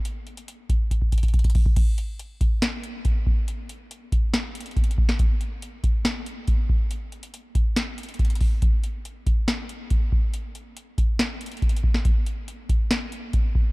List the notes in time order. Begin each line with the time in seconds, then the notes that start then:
0.05 closed hi-hat
0.27 closed hi-hat
0.37 closed hi-hat
0.48 closed hi-hat
0.69 kick, closed hi-hat
0.91 kick, closed hi-hat
1.02 kick
1.12 kick, closed hi-hat
1.18 closed hi-hat
1.23 kick, closed hi-hat
1.28 closed hi-hat
1.34 kick, closed hi-hat
1.39 closed hi-hat
1.44 kick, closed hi-hat
1.50 closed hi-hat
1.55 kick, open hi-hat
1.66 kick
1.76 kick, closed hi-hat, crash
1.98 closed hi-hat
2.19 closed hi-hat
2.41 kick, closed hi-hat
2.62 snare, closed hi-hat
2.84 closed hi-hat
3.05 kick, closed hi-hat
3.27 kick
3.48 closed hi-hat
3.69 closed hi-hat
3.91 closed hi-hat
4.12 kick, closed hi-hat
4.34 snare, closed hi-hat
4.55 closed hi-hat
4.61 closed hi-hat
4.66 closed hi-hat
4.71 closed hi-hat
4.76 kick, closed hi-hat
4.84 closed hi-hat
4.91 closed hi-hat
4.98 kick
5.09 snare
5.19 kick, closed hi-hat
5.41 closed hi-hat
5.62 closed hi-hat
5.84 kick, closed hi-hat
6.05 snare, closed hi-hat
6.26 closed hi-hat
6.48 kick, closed hi-hat
6.69 kick
6.91 closed hi-hat
7.12 closed hi-hat
7.23 closed hi-hat
7.34 closed hi-hat
7.55 kick, closed hi-hat
7.76 snare, closed hi-hat
7.98 closed hi-hat
8.03 closed hi-hat
8.09 closed hi-hat
8.14 closed hi-hat
8.19 kick, closed hi-hat
8.25 closed hi-hat
8.30 closed hi-hat
8.35 closed hi-hat
8.41 kick, open hi-hat
8.62 kick, closed hi-hat
8.84 closed hi-hat
9.05 closed hi-hat
9.27 kick, closed hi-hat
9.48 snare, closed hi-hat
9.69 closed hi-hat
9.90 kick, closed hi-hat
10.12 kick
10.34 closed hi-hat
10.55 closed hi-hat
10.77 closed hi-hat
10.98 kick, closed hi-hat
11.19 snare, closed hi-hat
11.41 closed hi-hat
11.46 closed hi-hat
11.52 closed hi-hat
11.57 closed hi-hat
11.62 kick, closed hi-hat
11.69 closed hi-hat
11.77 closed hi-hat
11.84 kick
11.94 snare
12.05 kick, closed hi-hat
12.26 closed hi-hat
12.48 closed hi-hat
12.69 kick, closed hi-hat
12.91 snare, closed hi-hat
13.12 closed hi-hat
13.33 kick, closed hi-hat
13.55 kick